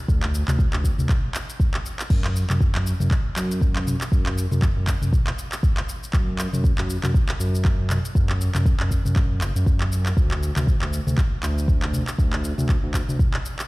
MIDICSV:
0, 0, Header, 1, 3, 480
1, 0, Start_track
1, 0, Tempo, 504202
1, 81, Time_signature, 4, 2, 24, 8
1, 13020, End_track
2, 0, Start_track
2, 0, Title_t, "Analog synth bass"
2, 0, Program_c, 0, 38
2, 81, Note_on_c, 0, 38, 97
2, 406, Note_off_c, 0, 38, 0
2, 456, Note_on_c, 0, 38, 84
2, 633, Note_off_c, 0, 38, 0
2, 696, Note_on_c, 0, 38, 83
2, 872, Note_off_c, 0, 38, 0
2, 935, Note_on_c, 0, 38, 76
2, 1016, Note_off_c, 0, 38, 0
2, 2001, Note_on_c, 0, 42, 94
2, 2326, Note_off_c, 0, 42, 0
2, 2376, Note_on_c, 0, 42, 81
2, 2553, Note_off_c, 0, 42, 0
2, 2617, Note_on_c, 0, 42, 83
2, 2793, Note_off_c, 0, 42, 0
2, 2857, Note_on_c, 0, 42, 83
2, 2936, Note_off_c, 0, 42, 0
2, 3201, Note_on_c, 0, 42, 106
2, 3766, Note_off_c, 0, 42, 0
2, 3921, Note_on_c, 0, 42, 100
2, 4246, Note_off_c, 0, 42, 0
2, 4296, Note_on_c, 0, 42, 85
2, 4473, Note_off_c, 0, 42, 0
2, 4537, Note_on_c, 0, 42, 85
2, 4713, Note_off_c, 0, 42, 0
2, 4778, Note_on_c, 0, 42, 77
2, 4857, Note_off_c, 0, 42, 0
2, 5841, Note_on_c, 0, 42, 100
2, 6166, Note_off_c, 0, 42, 0
2, 6217, Note_on_c, 0, 42, 86
2, 6393, Note_off_c, 0, 42, 0
2, 6458, Note_on_c, 0, 42, 81
2, 6634, Note_off_c, 0, 42, 0
2, 6696, Note_on_c, 0, 42, 77
2, 6776, Note_off_c, 0, 42, 0
2, 7041, Note_on_c, 0, 42, 104
2, 7606, Note_off_c, 0, 42, 0
2, 7760, Note_on_c, 0, 42, 101
2, 8085, Note_off_c, 0, 42, 0
2, 8137, Note_on_c, 0, 42, 86
2, 8313, Note_off_c, 0, 42, 0
2, 8376, Note_on_c, 0, 42, 80
2, 8553, Note_off_c, 0, 42, 0
2, 8617, Note_on_c, 0, 42, 78
2, 8960, Note_on_c, 0, 30, 77
2, 8975, Note_off_c, 0, 42, 0
2, 9065, Note_off_c, 0, 30, 0
2, 9096, Note_on_c, 0, 42, 82
2, 9641, Note_off_c, 0, 42, 0
2, 9680, Note_on_c, 0, 38, 104
2, 10005, Note_off_c, 0, 38, 0
2, 10057, Note_on_c, 0, 38, 85
2, 10233, Note_off_c, 0, 38, 0
2, 10297, Note_on_c, 0, 38, 85
2, 10473, Note_off_c, 0, 38, 0
2, 10536, Note_on_c, 0, 38, 78
2, 10616, Note_off_c, 0, 38, 0
2, 10879, Note_on_c, 0, 38, 101
2, 11445, Note_off_c, 0, 38, 0
2, 11599, Note_on_c, 0, 38, 96
2, 11925, Note_off_c, 0, 38, 0
2, 11976, Note_on_c, 0, 38, 89
2, 12152, Note_off_c, 0, 38, 0
2, 12217, Note_on_c, 0, 38, 84
2, 12393, Note_off_c, 0, 38, 0
2, 12456, Note_on_c, 0, 38, 78
2, 12536, Note_off_c, 0, 38, 0
2, 13020, End_track
3, 0, Start_track
3, 0, Title_t, "Drums"
3, 80, Note_on_c, 9, 36, 113
3, 87, Note_on_c, 9, 82, 38
3, 176, Note_off_c, 9, 36, 0
3, 182, Note_off_c, 9, 82, 0
3, 215, Note_on_c, 9, 39, 93
3, 310, Note_off_c, 9, 39, 0
3, 328, Note_on_c, 9, 82, 91
3, 423, Note_off_c, 9, 82, 0
3, 457, Note_on_c, 9, 39, 81
3, 457, Note_on_c, 9, 47, 108
3, 464, Note_on_c, 9, 82, 53
3, 552, Note_off_c, 9, 39, 0
3, 552, Note_off_c, 9, 47, 0
3, 559, Note_off_c, 9, 82, 0
3, 561, Note_on_c, 9, 36, 117
3, 568, Note_on_c, 9, 82, 38
3, 656, Note_off_c, 9, 36, 0
3, 664, Note_off_c, 9, 82, 0
3, 697, Note_on_c, 9, 39, 95
3, 792, Note_off_c, 9, 39, 0
3, 800, Note_on_c, 9, 36, 64
3, 808, Note_on_c, 9, 82, 90
3, 896, Note_off_c, 9, 36, 0
3, 904, Note_off_c, 9, 82, 0
3, 937, Note_on_c, 9, 47, 97
3, 944, Note_on_c, 9, 82, 50
3, 1032, Note_off_c, 9, 47, 0
3, 1039, Note_off_c, 9, 82, 0
3, 1041, Note_on_c, 9, 36, 119
3, 1041, Note_on_c, 9, 39, 81
3, 1041, Note_on_c, 9, 47, 80
3, 1048, Note_on_c, 9, 82, 38
3, 1136, Note_off_c, 9, 36, 0
3, 1136, Note_off_c, 9, 39, 0
3, 1136, Note_off_c, 9, 47, 0
3, 1143, Note_off_c, 9, 82, 0
3, 1281, Note_on_c, 9, 39, 98
3, 1288, Note_on_c, 9, 82, 93
3, 1376, Note_off_c, 9, 39, 0
3, 1383, Note_off_c, 9, 82, 0
3, 1424, Note_on_c, 9, 82, 55
3, 1519, Note_off_c, 9, 82, 0
3, 1521, Note_on_c, 9, 36, 118
3, 1528, Note_on_c, 9, 82, 38
3, 1616, Note_off_c, 9, 36, 0
3, 1623, Note_off_c, 9, 82, 0
3, 1656, Note_on_c, 9, 39, 93
3, 1751, Note_off_c, 9, 39, 0
3, 1769, Note_on_c, 9, 82, 88
3, 1864, Note_off_c, 9, 82, 0
3, 1898, Note_on_c, 9, 39, 78
3, 1905, Note_on_c, 9, 82, 53
3, 1993, Note_off_c, 9, 39, 0
3, 2001, Note_off_c, 9, 82, 0
3, 2001, Note_on_c, 9, 36, 114
3, 2001, Note_on_c, 9, 49, 80
3, 2008, Note_on_c, 9, 82, 41
3, 2096, Note_off_c, 9, 36, 0
3, 2096, Note_off_c, 9, 49, 0
3, 2104, Note_off_c, 9, 82, 0
3, 2137, Note_on_c, 9, 39, 99
3, 2232, Note_off_c, 9, 39, 0
3, 2249, Note_on_c, 9, 82, 89
3, 2344, Note_off_c, 9, 82, 0
3, 2379, Note_on_c, 9, 39, 85
3, 2379, Note_on_c, 9, 47, 101
3, 2386, Note_on_c, 9, 82, 56
3, 2474, Note_off_c, 9, 39, 0
3, 2474, Note_off_c, 9, 47, 0
3, 2481, Note_off_c, 9, 82, 0
3, 2481, Note_on_c, 9, 36, 123
3, 2490, Note_on_c, 9, 82, 39
3, 2576, Note_off_c, 9, 36, 0
3, 2585, Note_off_c, 9, 82, 0
3, 2618, Note_on_c, 9, 39, 96
3, 2713, Note_off_c, 9, 39, 0
3, 2729, Note_on_c, 9, 82, 94
3, 2824, Note_off_c, 9, 82, 0
3, 2857, Note_on_c, 9, 47, 101
3, 2865, Note_on_c, 9, 82, 53
3, 2953, Note_off_c, 9, 47, 0
3, 2960, Note_off_c, 9, 82, 0
3, 2961, Note_on_c, 9, 36, 120
3, 2962, Note_on_c, 9, 39, 84
3, 2969, Note_on_c, 9, 82, 40
3, 3056, Note_off_c, 9, 36, 0
3, 3057, Note_off_c, 9, 39, 0
3, 3064, Note_off_c, 9, 82, 0
3, 3202, Note_on_c, 9, 39, 96
3, 3209, Note_on_c, 9, 82, 99
3, 3297, Note_off_c, 9, 39, 0
3, 3304, Note_off_c, 9, 82, 0
3, 3345, Note_on_c, 9, 82, 58
3, 3440, Note_off_c, 9, 82, 0
3, 3440, Note_on_c, 9, 36, 120
3, 3449, Note_on_c, 9, 82, 40
3, 3536, Note_off_c, 9, 36, 0
3, 3544, Note_off_c, 9, 82, 0
3, 3577, Note_on_c, 9, 39, 99
3, 3672, Note_off_c, 9, 39, 0
3, 3682, Note_on_c, 9, 47, 82
3, 3689, Note_on_c, 9, 82, 89
3, 3777, Note_off_c, 9, 47, 0
3, 3784, Note_off_c, 9, 82, 0
3, 3818, Note_on_c, 9, 39, 81
3, 3825, Note_on_c, 9, 82, 56
3, 3913, Note_off_c, 9, 39, 0
3, 3920, Note_off_c, 9, 82, 0
3, 3921, Note_on_c, 9, 36, 116
3, 3930, Note_on_c, 9, 82, 40
3, 4016, Note_off_c, 9, 36, 0
3, 4025, Note_off_c, 9, 82, 0
3, 4056, Note_on_c, 9, 39, 98
3, 4152, Note_off_c, 9, 39, 0
3, 4169, Note_on_c, 9, 82, 101
3, 4264, Note_off_c, 9, 82, 0
3, 4297, Note_on_c, 9, 47, 96
3, 4304, Note_on_c, 9, 82, 57
3, 4392, Note_off_c, 9, 47, 0
3, 4400, Note_off_c, 9, 82, 0
3, 4400, Note_on_c, 9, 36, 121
3, 4401, Note_on_c, 9, 39, 85
3, 4408, Note_on_c, 9, 82, 43
3, 4496, Note_off_c, 9, 36, 0
3, 4496, Note_off_c, 9, 39, 0
3, 4503, Note_off_c, 9, 82, 0
3, 4640, Note_on_c, 9, 36, 65
3, 4640, Note_on_c, 9, 39, 101
3, 4647, Note_on_c, 9, 82, 99
3, 4735, Note_off_c, 9, 39, 0
3, 4736, Note_off_c, 9, 36, 0
3, 4742, Note_off_c, 9, 82, 0
3, 4777, Note_on_c, 9, 47, 94
3, 4784, Note_on_c, 9, 82, 56
3, 4872, Note_off_c, 9, 47, 0
3, 4879, Note_off_c, 9, 82, 0
3, 4880, Note_on_c, 9, 36, 121
3, 4880, Note_on_c, 9, 47, 80
3, 4888, Note_on_c, 9, 82, 44
3, 4976, Note_off_c, 9, 36, 0
3, 4976, Note_off_c, 9, 47, 0
3, 4983, Note_off_c, 9, 82, 0
3, 5017, Note_on_c, 9, 39, 102
3, 5112, Note_off_c, 9, 39, 0
3, 5127, Note_on_c, 9, 82, 100
3, 5222, Note_off_c, 9, 82, 0
3, 5256, Note_on_c, 9, 39, 87
3, 5263, Note_on_c, 9, 82, 58
3, 5351, Note_off_c, 9, 39, 0
3, 5358, Note_off_c, 9, 82, 0
3, 5360, Note_on_c, 9, 36, 127
3, 5366, Note_on_c, 9, 82, 41
3, 5456, Note_off_c, 9, 36, 0
3, 5462, Note_off_c, 9, 82, 0
3, 5495, Note_on_c, 9, 39, 97
3, 5590, Note_off_c, 9, 39, 0
3, 5607, Note_on_c, 9, 82, 95
3, 5702, Note_off_c, 9, 82, 0
3, 5743, Note_on_c, 9, 82, 55
3, 5839, Note_off_c, 9, 82, 0
3, 5839, Note_on_c, 9, 39, 85
3, 5841, Note_on_c, 9, 36, 119
3, 5846, Note_on_c, 9, 82, 41
3, 5934, Note_off_c, 9, 39, 0
3, 5936, Note_off_c, 9, 36, 0
3, 5941, Note_off_c, 9, 82, 0
3, 6080, Note_on_c, 9, 39, 100
3, 6087, Note_on_c, 9, 82, 99
3, 6175, Note_off_c, 9, 39, 0
3, 6182, Note_off_c, 9, 82, 0
3, 6217, Note_on_c, 9, 47, 97
3, 6224, Note_on_c, 9, 82, 59
3, 6312, Note_off_c, 9, 47, 0
3, 6319, Note_off_c, 9, 82, 0
3, 6321, Note_on_c, 9, 36, 127
3, 6328, Note_on_c, 9, 82, 43
3, 6416, Note_off_c, 9, 36, 0
3, 6423, Note_off_c, 9, 82, 0
3, 6456, Note_on_c, 9, 39, 96
3, 6551, Note_off_c, 9, 39, 0
3, 6568, Note_on_c, 9, 82, 99
3, 6663, Note_off_c, 9, 82, 0
3, 6698, Note_on_c, 9, 39, 79
3, 6698, Note_on_c, 9, 47, 95
3, 6705, Note_on_c, 9, 82, 59
3, 6793, Note_off_c, 9, 39, 0
3, 6793, Note_off_c, 9, 47, 0
3, 6800, Note_off_c, 9, 82, 0
3, 6801, Note_on_c, 9, 36, 127
3, 6810, Note_on_c, 9, 82, 42
3, 6896, Note_off_c, 9, 36, 0
3, 6905, Note_off_c, 9, 82, 0
3, 6938, Note_on_c, 9, 39, 102
3, 7033, Note_off_c, 9, 39, 0
3, 7049, Note_on_c, 9, 82, 102
3, 7144, Note_off_c, 9, 82, 0
3, 7186, Note_on_c, 9, 82, 59
3, 7281, Note_off_c, 9, 82, 0
3, 7281, Note_on_c, 9, 36, 127
3, 7281, Note_on_c, 9, 39, 82
3, 7289, Note_on_c, 9, 82, 40
3, 7376, Note_off_c, 9, 36, 0
3, 7377, Note_off_c, 9, 39, 0
3, 7384, Note_off_c, 9, 82, 0
3, 7521, Note_on_c, 9, 39, 88
3, 7521, Note_on_c, 9, 47, 76
3, 7529, Note_on_c, 9, 82, 97
3, 7616, Note_off_c, 9, 39, 0
3, 7616, Note_off_c, 9, 47, 0
3, 7624, Note_off_c, 9, 82, 0
3, 7664, Note_on_c, 9, 82, 58
3, 7760, Note_off_c, 9, 82, 0
3, 7761, Note_on_c, 9, 36, 120
3, 7768, Note_on_c, 9, 82, 41
3, 7856, Note_off_c, 9, 36, 0
3, 7863, Note_off_c, 9, 82, 0
3, 7897, Note_on_c, 9, 39, 90
3, 7992, Note_off_c, 9, 39, 0
3, 8008, Note_on_c, 9, 82, 95
3, 8103, Note_off_c, 9, 82, 0
3, 8137, Note_on_c, 9, 39, 78
3, 8137, Note_on_c, 9, 47, 94
3, 8144, Note_on_c, 9, 82, 59
3, 8232, Note_off_c, 9, 39, 0
3, 8232, Note_off_c, 9, 47, 0
3, 8239, Note_off_c, 9, 82, 0
3, 8240, Note_on_c, 9, 36, 125
3, 8247, Note_on_c, 9, 82, 43
3, 8336, Note_off_c, 9, 36, 0
3, 8342, Note_off_c, 9, 82, 0
3, 8376, Note_on_c, 9, 39, 95
3, 8471, Note_off_c, 9, 39, 0
3, 8480, Note_on_c, 9, 36, 65
3, 8487, Note_on_c, 9, 82, 93
3, 8575, Note_off_c, 9, 36, 0
3, 8583, Note_off_c, 9, 82, 0
3, 8617, Note_on_c, 9, 47, 92
3, 8624, Note_on_c, 9, 82, 57
3, 8712, Note_off_c, 9, 47, 0
3, 8719, Note_off_c, 9, 82, 0
3, 8720, Note_on_c, 9, 36, 123
3, 8721, Note_on_c, 9, 39, 79
3, 8721, Note_on_c, 9, 47, 78
3, 8728, Note_on_c, 9, 82, 41
3, 8816, Note_off_c, 9, 36, 0
3, 8816, Note_off_c, 9, 39, 0
3, 8816, Note_off_c, 9, 47, 0
3, 8823, Note_off_c, 9, 82, 0
3, 8960, Note_on_c, 9, 39, 98
3, 8967, Note_on_c, 9, 82, 97
3, 9055, Note_off_c, 9, 39, 0
3, 9062, Note_off_c, 9, 82, 0
3, 9103, Note_on_c, 9, 82, 58
3, 9198, Note_off_c, 9, 82, 0
3, 9200, Note_on_c, 9, 36, 126
3, 9207, Note_on_c, 9, 82, 42
3, 9296, Note_off_c, 9, 36, 0
3, 9302, Note_off_c, 9, 82, 0
3, 9335, Note_on_c, 9, 39, 91
3, 9430, Note_off_c, 9, 39, 0
3, 9447, Note_on_c, 9, 82, 97
3, 9542, Note_off_c, 9, 82, 0
3, 9576, Note_on_c, 9, 39, 77
3, 9583, Note_on_c, 9, 82, 57
3, 9671, Note_off_c, 9, 39, 0
3, 9678, Note_off_c, 9, 82, 0
3, 9680, Note_on_c, 9, 36, 123
3, 9688, Note_on_c, 9, 82, 39
3, 9775, Note_off_c, 9, 36, 0
3, 9784, Note_off_c, 9, 82, 0
3, 9816, Note_on_c, 9, 39, 91
3, 9912, Note_off_c, 9, 39, 0
3, 9929, Note_on_c, 9, 82, 91
3, 10024, Note_off_c, 9, 82, 0
3, 10057, Note_on_c, 9, 39, 83
3, 10057, Note_on_c, 9, 47, 94
3, 10064, Note_on_c, 9, 82, 55
3, 10152, Note_off_c, 9, 39, 0
3, 10152, Note_off_c, 9, 47, 0
3, 10159, Note_off_c, 9, 82, 0
3, 10160, Note_on_c, 9, 36, 123
3, 10169, Note_on_c, 9, 82, 42
3, 10255, Note_off_c, 9, 36, 0
3, 10264, Note_off_c, 9, 82, 0
3, 10297, Note_on_c, 9, 39, 91
3, 10392, Note_off_c, 9, 39, 0
3, 10408, Note_on_c, 9, 82, 98
3, 10503, Note_off_c, 9, 82, 0
3, 10537, Note_on_c, 9, 47, 88
3, 10545, Note_on_c, 9, 82, 55
3, 10633, Note_off_c, 9, 47, 0
3, 10640, Note_off_c, 9, 82, 0
3, 10640, Note_on_c, 9, 36, 127
3, 10641, Note_on_c, 9, 39, 77
3, 10648, Note_on_c, 9, 82, 41
3, 10735, Note_off_c, 9, 36, 0
3, 10736, Note_off_c, 9, 39, 0
3, 10744, Note_off_c, 9, 82, 0
3, 10881, Note_on_c, 9, 39, 96
3, 10889, Note_on_c, 9, 82, 97
3, 10976, Note_off_c, 9, 39, 0
3, 10984, Note_off_c, 9, 82, 0
3, 11025, Note_on_c, 9, 82, 56
3, 11120, Note_off_c, 9, 82, 0
3, 11120, Note_on_c, 9, 36, 121
3, 11129, Note_on_c, 9, 82, 39
3, 11215, Note_off_c, 9, 36, 0
3, 11224, Note_off_c, 9, 82, 0
3, 11256, Note_on_c, 9, 39, 91
3, 11351, Note_off_c, 9, 39, 0
3, 11360, Note_on_c, 9, 47, 73
3, 11367, Note_on_c, 9, 82, 96
3, 11455, Note_off_c, 9, 47, 0
3, 11462, Note_off_c, 9, 82, 0
3, 11495, Note_on_c, 9, 39, 79
3, 11502, Note_on_c, 9, 82, 53
3, 11590, Note_off_c, 9, 39, 0
3, 11598, Note_off_c, 9, 82, 0
3, 11600, Note_on_c, 9, 36, 109
3, 11608, Note_on_c, 9, 82, 40
3, 11695, Note_off_c, 9, 36, 0
3, 11703, Note_off_c, 9, 82, 0
3, 11736, Note_on_c, 9, 39, 94
3, 11831, Note_off_c, 9, 39, 0
3, 11847, Note_on_c, 9, 82, 87
3, 11942, Note_off_c, 9, 82, 0
3, 11977, Note_on_c, 9, 47, 98
3, 11984, Note_on_c, 9, 82, 54
3, 12072, Note_off_c, 9, 47, 0
3, 12079, Note_off_c, 9, 82, 0
3, 12080, Note_on_c, 9, 36, 117
3, 12080, Note_on_c, 9, 39, 75
3, 12087, Note_on_c, 9, 82, 38
3, 12175, Note_off_c, 9, 36, 0
3, 12175, Note_off_c, 9, 39, 0
3, 12183, Note_off_c, 9, 82, 0
3, 12320, Note_on_c, 9, 36, 58
3, 12320, Note_on_c, 9, 39, 86
3, 12327, Note_on_c, 9, 82, 90
3, 12415, Note_off_c, 9, 36, 0
3, 12415, Note_off_c, 9, 39, 0
3, 12422, Note_off_c, 9, 82, 0
3, 12457, Note_on_c, 9, 47, 95
3, 12464, Note_on_c, 9, 82, 53
3, 12552, Note_off_c, 9, 47, 0
3, 12559, Note_off_c, 9, 82, 0
3, 12560, Note_on_c, 9, 36, 120
3, 12560, Note_on_c, 9, 47, 81
3, 12568, Note_on_c, 9, 82, 40
3, 12655, Note_off_c, 9, 36, 0
3, 12655, Note_off_c, 9, 47, 0
3, 12663, Note_off_c, 9, 82, 0
3, 12697, Note_on_c, 9, 39, 92
3, 12792, Note_off_c, 9, 39, 0
3, 12809, Note_on_c, 9, 82, 89
3, 12904, Note_off_c, 9, 82, 0
3, 12937, Note_on_c, 9, 39, 77
3, 12945, Note_on_c, 9, 82, 53
3, 13020, Note_off_c, 9, 39, 0
3, 13020, Note_off_c, 9, 82, 0
3, 13020, End_track
0, 0, End_of_file